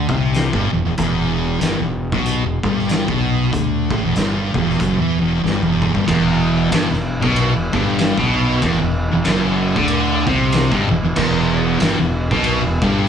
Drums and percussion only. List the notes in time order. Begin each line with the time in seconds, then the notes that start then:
0.09 kick
0.34 snare, closed hi-hat
0.53 kick
0.98 kick, closed hi-hat
1.61 snare, closed hi-hat
2.12 kick
2.26 closed hi-hat
2.63 kick
2.79 snare
2.89 snare, closed hi-hat
3.08 kick
3.53 kick, closed hi-hat
3.91 kick
4.16 snare, closed hi-hat
4.54 kick
4.70 snare
4.80 kick, closed hi-hat
5.46 snare
5.63 mid tom
5.82 kick
5.95 kick
6.08 kick, ride bell
6.72 snare, ride bell
6.93 snare
7.23 kick
7.36 ride bell
7.73 kick
7.99 snare, ride bell
8.18 kick
8.62 kick, ride bell
9.25 snare, ride bell
9.76 kick
9.88 ride bell
10.27 kick
10.52 snare, ride bell
10.72 kick
11.16 kick, crash
11.80 snare, ride bell
12.31 kick
12.44 ride bell
12.82 kick